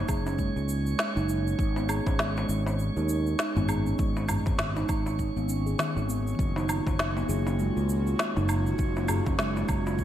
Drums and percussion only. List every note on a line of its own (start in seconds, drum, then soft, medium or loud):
0.08 kick loud
0.08 low woodblock medium
0.08 shaker medium
0.26 darbuka ka medium
0.26 darbuka tek medium
0.26 shaker soft
0.39 kick medium
0.39 shaker soft
0.57 shaker soft
0.69 shaker medium
0.86 shaker soft
0.99 snare loud
0.99 shaker soft
1.17 shaker soft
1.29 shaker medium
1.47 shaker soft
1.59 kick loud
1.59 shaker soft
1.76 darbuka tek medium
1.76 shaker soft
1.89 low woodblock medium
1.89 shaker medium
2.07 kick loud
2.07 darbuka tek medium
2.07 shaker soft
2.19 snare loud
2.19 shaker soft
2.37 darbuka tek medium
2.37 shaker soft
2.49 shaker medium
2.67 darbuka ka medium
2.67 darbuka tek medium
2.67 shaker soft
2.79 shaker soft
2.97 shaker soft
3.09 shaker medium
3.27 shaker soft
3.39 snare loud
3.39 shaker soft
3.56 darbuka dum medium
3.56 shaker soft
3.69 low woodblock medium
3.69 shaker medium
3.86 shaker soft
3.99 kick loud
3.99 shaker soft
4.17 darbuka tek medium
4.17 shaker soft
4.28 darbuka ka soft
4.28 darbuka dum medium
4.28 low woodblock medium
4.28 shaker medium
4.46 kick loud
4.46 darbuka tek medium
4.46 shaker soft
4.59 snare medium
4.59 shaker soft
4.76 darbuka tek medium
4.76 shaker soft
4.89 kick loud
4.89 low woodblock medium
4.89 shaker medium
5.06 darbuka ka medium
5.06 darbuka tek medium
5.06 shaker soft
5.19 kick medium
5.19 shaker soft
5.37 shaker soft
5.49 shaker medium
5.67 shaker soft
5.79 snare medium
5.79 shaker soft
5.97 shaker soft
6.09 shaker medium
6.27 shaker soft
6.39 kick loud
6.39 shaker soft
6.56 darbuka tek medium
6.56 shaker soft
6.69 low woodblock medium
6.69 shaker medium
6.87 kick loud
6.87 darbuka tek medium
6.87 shaker soft
6.99 snare medium
6.99 shaker soft
7.17 darbuka tek medium
7.17 shaker soft
7.29 shaker medium
7.47 darbuka ka medium
7.47 darbuka tek medium
7.47 shaker soft
7.59 shaker soft
7.77 shaker soft
7.89 shaker medium
8.07 shaker soft
8.19 snare medium
8.19 shaker soft
8.37 darbuka dum medium
8.37 shaker soft
8.49 low woodblock medium
8.49 shaker medium
8.67 shaker soft
8.79 kick loud
8.79 shaker soft
8.96 darbuka tek medium
8.96 shaker soft
9.08 darbuka ka soft
9.08 darbuka dum medium
9.08 low woodblock medium
9.08 shaker medium
9.26 kick medium
9.26 darbuka tek medium
9.26 shaker soft
9.39 snare medium
9.39 shaker soft
9.57 darbuka tek medium
9.57 shaker soft
9.69 kick medium
9.69 low woodblock medium
9.69 shaker medium
9.87 darbuka ka medium
9.87 darbuka tek medium
9.87 shaker soft
9.99 kick soft
9.99 shaker soft